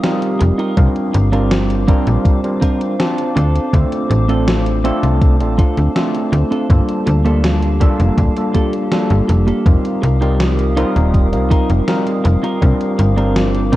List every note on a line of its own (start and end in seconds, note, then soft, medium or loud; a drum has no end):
0.00 0.72 G3 medium
0.00 0.73 C4 medium
0.00 0.73 D#4 medium
0.00 0.73 F4 medium
0.00 0.74 G4 medium
0.00 0.73 A#4 medium
0.00 6.66 F5 medium
0.00 0.74 D#6 medium
0.00 snare loud
0.00 closed hi-hat medium
0.22 closed hi-hat soft
0.39 0.52 F1 loud
0.39 muted clean electric guitar stroke medium
0.39 closed hi-hat loud
0.58 0.77 D#4 medium
0.58 0.77 F4 medium
0.58 0.77 G4 medium
0.58 0.77 A#4 medium
0.58 closed hi-hat soft
0.77 0.89 C2 loud
0.77 1.28 G3 medium
0.77 1.28 C4 medium
0.77 1.28 D4 medium
0.77 1.29 F4 medium
0.77 1.29 A#4 medium
0.77 6.66 C5 medium
0.77 6.66 D6 medium
0.77 kick loud
0.77 closed hi-hat medium
0.96 closed hi-hat soft
1.14 1.96 G1 loud
1.14 muted clean electric guitar stroke medium
1.14 closed hi-hat loud
1.32 1.83 G3 medium
1.32 1.51 C4 medium
1.32 1.84 C4 medium
1.32 1.51 D4 medium
1.32 1.84 D4 medium
1.32 1.51 F4 medium
1.32 1.84 F4 medium
1.32 1.51 A#4 medium
1.32 1.84 A#4 medium
1.32 closed hi-hat soft
1.51 snare loud
1.51 closed hi-hat medium
1.70 closed hi-hat soft
1.88 2.39 G3 loud
1.88 2.06 C4 medium
1.88 2.39 C4 medium
1.88 2.07 D4 medium
1.88 2.40 D4 medium
1.88 2.07 F4 medium
1.88 2.40 F4 medium
1.88 2.07 A#4 medium
1.88 2.40 A#4 loud
1.88 kick loud
1.88 closed hi-hat loud
2.07 2.18 A#1 medium
2.07 closed hi-hat soft
2.25 kick loud
2.25 closed hi-hat medium
2.43 2.95 G3 medium
2.43 2.95 C4 medium
2.43 2.95 D4 medium
2.43 2.95 F4 medium
2.43 2.95 A#4 medium
2.43 closed hi-hat soft
2.61 2.81 C4 medium
2.61 2.81 D4 medium
2.61 2.81 F4 medium
2.61 2.81 A#4 loud
2.61 kick medium
2.61 closed hi-hat loud
2.81 closed hi-hat soft
2.99 3.69 C4 medium
2.99 3.69 D4 medium
2.99 3.69 F4 medium
2.99 3.69 A5 medium
2.99 snare loud
2.99 closed hi-hat medium
3.18 closed hi-hat soft
3.36 3.59 D2 loud
3.36 3.95 C4 medium
3.36 3.95 D4 medium
3.36 3.96 F4 medium
3.36 3.96 A4 loud
3.36 9.62 A5 medium
3.36 closed hi-hat loud
3.56 closed hi-hat soft
3.73 3.85 D2 loud
3.73 4.24 A3 medium
3.73 4.25 C4 medium
3.73 4.25 D4 medium
3.73 4.25 F4 medium
3.73 4.25 A4 medium
3.73 kick loud
3.73 closed hi-hat medium
3.92 closed hi-hat soft
4.10 4.92 A1 loud
4.10 muted clean electric guitar stroke medium
4.10 closed hi-hat loud
4.28 4.80 A3 medium
4.28 4.47 C4 medium
4.28 4.80 C4 medium
4.28 4.47 D4 medium
4.28 4.80 D4 medium
4.28 4.48 F4 medium
4.28 4.80 F4 medium
4.28 4.48 A4 medium
4.28 4.81 A4 medium
4.28 closed hi-hat soft
4.48 snare loud
4.48 closed hi-hat medium
4.66 closed hi-hat soft
4.84 5.35 A3 loud
4.84 5.03 C4 medium
4.84 5.35 C4 medium
4.84 5.36 D4 medium
4.84 5.03 D4 medium
4.84 5.36 F4 medium
4.84 5.03 F4 medium
4.84 5.36 A4 loud
4.84 5.03 A4 loud
4.84 closed hi-hat loud
5.03 5.42 C2 medium
5.03 closed hi-hat soft
5.21 kick loud
5.21 closed hi-hat medium
5.40 5.63 A1 medium
5.40 5.91 A3 medium
5.40 5.91 C4 medium
5.40 5.91 D4 medium
5.40 5.92 F4 medium
5.40 5.92 A4 medium
5.40 closed hi-hat soft
5.58 5.77 C4 medium
5.58 5.77 D4 medium
5.58 5.77 F4 medium
5.58 5.77 A4 medium
5.58 kick loud
5.58 closed hi-hat medium
5.77 5.89 D2 medium
5.77 closed hi-hat soft
5.95 6.65 A3 medium
5.95 6.65 C4 medium
5.95 6.65 D4 medium
5.95 6.66 F4 medium
5.95 6.66 A4 medium
5.95 snare loud
5.95 closed hi-hat medium
6.15 closed hi-hat soft
6.32 6.44 D2 loud
6.32 muted clean electric guitar stroke medium
6.32 closed hi-hat medium
6.51 6.69 C4 medium
6.51 6.70 D4 medium
6.51 6.70 F4 medium
6.51 6.70 A4 medium
6.51 closed hi-hat soft
6.69 6.81 G1 loud
6.69 7.20 G3 medium
6.69 7.21 A#3 medium
6.69 7.21 D4 medium
6.69 7.21 F4 medium
6.69 12.58 G4 medium
6.69 7.21 A4 medium
6.69 9.63 F5 medium
6.69 kick loud
6.69 closed hi-hat medium
6.89 closed hi-hat soft
7.06 7.88 D2 loud
7.06 muted clean electric guitar stroke medium
7.06 closed hi-hat medium
7.25 7.76 G3 medium
7.25 7.44 A#3 medium
7.25 7.76 A#3 medium
7.25 7.77 D4 medium
7.25 7.44 F4 medium
7.25 7.77 F4 medium
7.25 7.44 G4 medium
7.25 7.44 A4 medium
7.25 7.77 A4 medium
7.25 closed hi-hat soft
7.44 snare loud
7.44 closed hi-hat medium
7.63 closed hi-hat soft
7.80 8.32 G3 loud
7.80 7.99 A#3 medium
7.80 8.32 A#3 medium
7.80 8.32 D4 medium
7.80 7.99 F4 medium
7.80 8.32 F4 medium
7.80 7.99 G4 medium
7.80 8.00 A4 medium
7.80 8.32 A4 loud
7.80 kick loud
7.80 closed hi-hat medium
8.00 8.11 F1 medium
8.00 closed hi-hat soft
8.18 8.29 D1 loud
8.18 kick loud
8.18 closed hi-hat medium
8.36 8.87 G3 medium
8.36 8.88 A#3 medium
8.36 8.88 D4 medium
8.36 8.88 F4 medium
8.36 8.88 A4 medium
8.36 closed hi-hat soft
8.54 8.73 A#3 medium
8.54 8.73 F4 medium
8.54 8.73 G4 medium
8.54 8.74 A4 medium
8.54 kick medium
8.54 closed hi-hat medium
8.73 closed hi-hat soft
8.91 9.61 G3 medium
8.91 9.61 A#3 medium
8.91 9.62 D4 medium
8.91 9.62 F4 medium
8.91 9.62 A4 medium
8.91 snare loud
8.91 closed hi-hat medium
9.10 9.22 G1 medium
9.10 closed hi-hat soft
9.28 9.52 F1 loud
9.28 muted clean electric guitar stroke medium
9.28 closed hi-hat medium
9.47 9.66 A#3 medium
9.47 9.66 F4 medium
9.47 9.66 G4 medium
9.47 9.66 A4 medium
9.47 closed hi-hat soft
9.66 9.77 F1 loud
9.66 10.17 G3 medium
9.66 10.17 C4 medium
9.66 10.17 D#4 medium
9.66 10.17 F4 medium
9.66 13.76 A#4 medium
9.66 10.18 A#4 medium
9.66 13.76 F5 medium
9.66 12.59 D#6 medium
9.66 kick loud
9.66 closed hi-hat medium
9.85 closed hi-hat soft
10.02 10.85 C2 medium
10.02 muted clean electric guitar stroke medium
10.02 closed hi-hat medium
10.21 10.72 G3 medium
10.21 10.73 C4 medium
10.21 10.40 D#4 medium
10.21 10.73 D#4 medium
10.21 10.40 F4 medium
10.21 10.73 F4 medium
10.21 10.40 G4 medium
10.21 10.40 A#4 medium
10.21 10.73 A#4 medium
10.21 closed hi-hat soft
10.40 snare loud
10.40 closed hi-hat medium
10.59 closed hi-hat soft
10.76 11.28 G3 medium
10.76 11.28 C4 medium
10.76 10.95 D#4 medium
10.76 11.28 D#4 medium
10.76 10.95 F4 medium
10.76 11.28 F4 medium
10.76 10.96 G4 medium
10.76 10.96 A#4 loud
10.76 11.29 A#4 loud
10.76 closed hi-hat medium
10.96 11.34 D#1 medium
10.96 closed hi-hat soft
11.14 kick loud
11.14 closed hi-hat medium
11.32 11.56 C2 medium
11.32 11.83 G3 medium
11.32 11.84 C4 medium
11.32 11.84 D#4 medium
11.32 11.84 F4 medium
11.32 11.84 A#4 medium
11.32 closed hi-hat soft
11.50 11.69 D#4 medium
11.50 11.69 F4 medium
11.50 11.70 G4 medium
11.50 11.70 A#4 medium
11.50 kick loud
11.50 closed hi-hat medium
11.70 11.81 F1 medium
11.70 closed hi-hat soft
11.88 12.58 G3 medium
11.88 12.58 C4 medium
11.88 12.58 D#4 medium
11.88 12.58 F4 medium
11.88 12.58 A#4 medium
11.88 snare loud
11.88 closed hi-hat medium
12.07 closed hi-hat soft
12.24 12.37 F1 loud
12.24 muted clean electric guitar stroke medium
12.24 closed hi-hat medium
12.43 12.62 D#4 medium
12.43 12.62 F4 medium
12.43 12.62 G4 medium
12.43 12.62 A#4 medium
12.43 closed hi-hat soft
12.61 12.74 C2 loud
12.61 13.13 G3 medium
12.61 13.13 C4 medium
12.61 13.13 D4 medium
12.61 13.13 F4 medium
12.61 13.14 A#4 medium
12.61 13.76 C5 medium
12.61 13.76 D6 medium
12.61 kick loud
12.61 closed hi-hat medium
12.81 closed hi-hat soft
12.99 13.76 G1 medium
12.99 muted clean electric guitar stroke medium
12.99 closed hi-hat medium
13.17 13.68 G3 medium
13.17 13.36 C4 medium
13.17 13.69 C4 medium
13.17 13.36 D4 medium
13.17 13.69 D4 medium
13.17 13.36 F4 medium
13.17 13.69 F4 medium
13.17 13.36 A#4 medium
13.17 13.69 A#4 medium
13.17 closed hi-hat soft
13.36 snare loud
13.36 closed hi-hat medium
13.55 closed hi-hat soft
13.72 13.76 G3 loud
13.72 13.76 C4 medium
13.72 13.76 D4 medium
13.72 13.76 F4 medium
13.72 kick loud
13.72 closed hi-hat loud